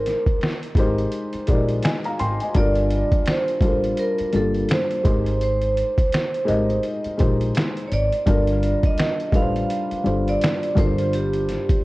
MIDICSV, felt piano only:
0, 0, Header, 1, 2, 480
1, 0, Start_track
1, 0, Tempo, 714286
1, 1716, Time_signature, 4, 2, 24, 8
1, 7957, End_track
2, 0, Start_track
2, 0, Title_t, "Felt piano"
2, 0, Program_c, 0, 0
2, 0, Control_c, 0, 64, 127
2, 0, Note_on_c, 0, 56, 74
2, 0, Note_on_c, 0, 63, 70
2, 0, Note_on_c, 0, 67, 70
2, 0, Note_on_c, 0, 70, 77
2, 0, Note_on_c, 0, 72, 92
2, 327, Note_off_c, 0, 56, 0
2, 331, Note_off_c, 0, 63, 0
2, 334, Note_off_c, 0, 67, 0
2, 337, Note_off_c, 0, 70, 0
2, 339, Note_off_c, 0, 72, 0
2, 513, Note_on_c, 0, 56, 79
2, 518, Note_on_c, 0, 63, 73
2, 526, Note_on_c, 0, 67, 74
2, 530, Note_on_c, 0, 70, 70
2, 534, Note_on_c, 0, 72, 87
2, 887, Note_off_c, 0, 56, 0
2, 889, Note_off_c, 0, 63, 0
2, 893, Note_off_c, 0, 67, 0
2, 895, Note_off_c, 0, 70, 0
2, 897, Note_off_c, 0, 72, 0
2, 992, Note_on_c, 0, 56, 77
2, 995, Note_on_c, 0, 63, 67
2, 1003, Note_on_c, 0, 67, 62
2, 1008, Note_on_c, 0, 70, 71
2, 1012, Note_on_c, 0, 74, 78
2, 1238, Note_on_c, 0, 80, 59
2, 1243, Note_on_c, 0, 75, 45
2, 1244, Note_off_c, 0, 74, 0
2, 1371, Note_off_c, 0, 80, 0
2, 1374, Note_off_c, 0, 75, 0
2, 1380, Note_on_c, 0, 82, 65
2, 1384, Note_on_c, 0, 77, 58
2, 1472, Note_off_c, 0, 82, 0
2, 1474, Note_off_c, 0, 77, 0
2, 1476, Note_on_c, 0, 84, 72
2, 1483, Note_on_c, 0, 79, 59
2, 1530, Note_off_c, 0, 56, 0
2, 1532, Note_off_c, 0, 63, 0
2, 1536, Note_off_c, 0, 67, 0
2, 1538, Note_off_c, 0, 70, 0
2, 1610, Note_off_c, 0, 84, 0
2, 1614, Note_off_c, 0, 79, 0
2, 1622, Note_on_c, 0, 80, 58
2, 1627, Note_on_c, 0, 75, 53
2, 1710, Note_on_c, 0, 55, 84
2, 1715, Note_on_c, 0, 62, 78
2, 1722, Note_on_c, 0, 65, 82
2, 1724, Control_c, 0, 64, 0
2, 1726, Note_on_c, 0, 69, 76
2, 1733, Note_on_c, 0, 70, 103
2, 1822, Control_c, 0, 64, 127
2, 1848, Note_off_c, 0, 80, 0
2, 1851, Note_off_c, 0, 75, 0
2, 2249, Note_off_c, 0, 55, 0
2, 2252, Note_off_c, 0, 62, 0
2, 2255, Note_off_c, 0, 65, 0
2, 2257, Note_off_c, 0, 69, 0
2, 2261, Note_off_c, 0, 70, 0
2, 2428, Note_on_c, 0, 55, 66
2, 2434, Note_on_c, 0, 62, 65
2, 2438, Note_on_c, 0, 65, 69
2, 2445, Note_on_c, 0, 69, 67
2, 2450, Note_on_c, 0, 70, 69
2, 2804, Note_off_c, 0, 55, 0
2, 2807, Note_off_c, 0, 62, 0
2, 2809, Note_off_c, 0, 65, 0
2, 2813, Note_off_c, 0, 69, 0
2, 2815, Note_off_c, 0, 70, 0
2, 2909, Note_on_c, 0, 55, 66
2, 2913, Note_on_c, 0, 62, 53
2, 2919, Note_on_c, 0, 65, 54
2, 2924, Note_on_c, 0, 69, 60
2, 2929, Note_on_c, 0, 58, 65
2, 3383, Note_on_c, 0, 56, 77
2, 3389, Note_on_c, 0, 63, 66
2, 3392, Note_off_c, 0, 55, 0
2, 3394, Note_off_c, 0, 62, 0
2, 3395, Note_on_c, 0, 67, 66
2, 3397, Note_off_c, 0, 65, 0
2, 3399, Note_on_c, 0, 70, 65
2, 3400, Note_off_c, 0, 69, 0
2, 3402, Note_off_c, 0, 58, 0
2, 3405, Control_c, 0, 64, 0
2, 3405, Note_on_c, 0, 72, 85
2, 3507, Control_c, 0, 64, 127
2, 4166, Note_off_c, 0, 56, 0
2, 4169, Note_off_c, 0, 63, 0
2, 4172, Note_off_c, 0, 67, 0
2, 4174, Note_off_c, 0, 70, 0
2, 4177, Note_off_c, 0, 72, 0
2, 4333, Note_on_c, 0, 56, 80
2, 4338, Note_on_c, 0, 63, 71
2, 4344, Note_on_c, 0, 67, 70
2, 4350, Note_on_c, 0, 70, 68
2, 4356, Note_on_c, 0, 75, 89
2, 4716, Note_off_c, 0, 56, 0
2, 4719, Note_off_c, 0, 63, 0
2, 4722, Note_off_c, 0, 67, 0
2, 4725, Note_off_c, 0, 70, 0
2, 4728, Note_off_c, 0, 75, 0
2, 4822, Note_on_c, 0, 56, 74
2, 4827, Note_on_c, 0, 63, 68
2, 4832, Note_on_c, 0, 67, 62
2, 4838, Note_on_c, 0, 70, 62
2, 4841, Note_on_c, 0, 72, 71
2, 5365, Note_off_c, 0, 56, 0
2, 5368, Note_off_c, 0, 63, 0
2, 5370, Note_off_c, 0, 67, 0
2, 5373, Note_off_c, 0, 70, 0
2, 5375, Note_off_c, 0, 72, 0
2, 5549, Note_on_c, 0, 55, 79
2, 5555, Note_on_c, 0, 62, 84
2, 5560, Note_on_c, 0, 65, 77
2, 5565, Control_c, 0, 64, 0
2, 5565, Note_on_c, 0, 69, 77
2, 5572, Note_on_c, 0, 70, 97
2, 5700, Control_c, 0, 64, 127
2, 6089, Note_off_c, 0, 55, 0
2, 6092, Note_off_c, 0, 62, 0
2, 6094, Note_off_c, 0, 65, 0
2, 6097, Note_off_c, 0, 69, 0
2, 6100, Note_off_c, 0, 70, 0
2, 6265, Note_on_c, 0, 55, 76
2, 6271, Note_on_c, 0, 62, 66
2, 6276, Note_on_c, 0, 65, 58
2, 6281, Note_on_c, 0, 69, 66
2, 6287, Note_on_c, 0, 71, 67
2, 6332, Note_on_c, 0, 72, 74
2, 6333, Note_off_c, 0, 71, 0
2, 6642, Note_off_c, 0, 55, 0
2, 6646, Note_off_c, 0, 62, 0
2, 6648, Note_off_c, 0, 65, 0
2, 6650, Note_off_c, 0, 69, 0
2, 6676, Note_off_c, 0, 72, 0
2, 6744, Note_on_c, 0, 55, 64
2, 6749, Note_on_c, 0, 62, 57
2, 6756, Note_on_c, 0, 65, 54
2, 6761, Note_on_c, 0, 69, 57
2, 6764, Note_on_c, 0, 72, 70
2, 7214, Note_off_c, 0, 55, 0
2, 7217, Note_off_c, 0, 62, 0
2, 7221, Note_off_c, 0, 65, 0
2, 7224, Note_on_c, 0, 55, 78
2, 7227, Note_on_c, 0, 62, 65
2, 7228, Note_off_c, 0, 69, 0
2, 7231, Note_on_c, 0, 65, 67
2, 7236, Note_off_c, 0, 72, 0
2, 7238, Note_on_c, 0, 69, 70
2, 7241, Note_on_c, 0, 70, 67
2, 7244, Control_c, 0, 64, 0
2, 7246, Note_on_c, 0, 72, 83
2, 7369, Control_c, 0, 64, 127
2, 7957, Note_off_c, 0, 55, 0
2, 7957, Note_off_c, 0, 62, 0
2, 7957, Note_off_c, 0, 65, 0
2, 7957, Note_off_c, 0, 69, 0
2, 7957, Note_off_c, 0, 70, 0
2, 7957, Note_off_c, 0, 72, 0
2, 7957, End_track
0, 0, End_of_file